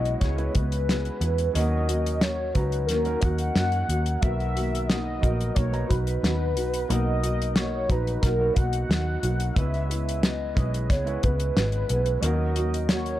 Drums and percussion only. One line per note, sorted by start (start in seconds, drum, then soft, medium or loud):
0.05 closed hi-hat soft
0.21 kick medium
0.21 snare soft
0.21 closed hi-hat medium
0.38 closed hi-hat soft
0.55 kick medium
0.55 closed hi-hat medium
0.72 closed hi-hat medium
0.89 snare medium
0.89 closed hi-hat medium
1.05 closed hi-hat soft
1.21 closed hi-hat medium
1.38 closed hi-hat soft
1.55 closed hi-hat medium
1.89 closed hi-hat medium
2.06 closed hi-hat soft
2.21 snare loud
2.21 closed hi-hat medium
2.55 kick medium
2.55 closed hi-hat medium
2.72 closed hi-hat soft
2.89 snare soft
2.89 closed hi-hat medium
3.05 closed hi-hat soft
3.22 kick medium
3.22 closed hi-hat medium
3.38 closed hi-hat medium
3.56 snare medium
3.56 closed hi-hat medium
3.72 closed hi-hat soft
3.90 closed hi-hat medium
4.06 closed hi-hat soft
4.22 kick loud
4.22 closed hi-hat medium
4.40 closed hi-hat soft
4.57 closed hi-hat medium
4.75 closed hi-hat medium
4.90 snare loud
4.90 closed hi-hat medium
5.23 kick medium
5.23 closed hi-hat medium
5.41 closed hi-hat soft
5.56 kick medium
5.56 closed hi-hat medium
5.73 closed hi-hat soft
5.90 kick medium
5.90 closed hi-hat medium
6.07 closed hi-hat medium
6.24 snare medium
6.24 closed hi-hat medium
6.57 closed hi-hat medium
6.74 closed hi-hat soft
6.90 closed hi-hat medium
7.24 closed hi-hat medium
7.42 closed hi-hat soft
7.56 snare medium
7.56 closed hi-hat medium
7.90 kick medium
7.90 closed hi-hat medium
8.07 closed hi-hat soft
8.23 kick medium
8.23 snare soft
8.23 closed hi-hat medium
8.56 kick medium
8.56 closed hi-hat medium
8.73 closed hi-hat medium
8.91 snare medium
8.91 closed hi-hat medium
9.23 closed hi-hat medium
9.40 closed hi-hat soft
9.56 kick loud
9.56 closed hi-hat medium
9.74 closed hi-hat soft
9.91 closed hi-hat medium
10.09 closed hi-hat medium
10.23 snare loud
10.23 closed hi-hat medium
10.57 kick medium
10.57 closed hi-hat medium
10.74 closed hi-hat soft
10.90 kick medium
10.90 snare soft
10.90 closed hi-hat medium
11.07 closed hi-hat soft
11.23 kick medium
11.23 closed hi-hat medium
11.40 closed hi-hat medium
11.57 snare medium
11.57 closed hi-hat medium
11.72 closed hi-hat soft
11.89 closed hi-hat medium
12.06 closed hi-hat soft
12.23 closed hi-hat medium
12.56 closed hi-hat medium
12.74 closed hi-hat soft
12.89 snare loud
12.89 closed hi-hat medium
13.06 closed hi-hat soft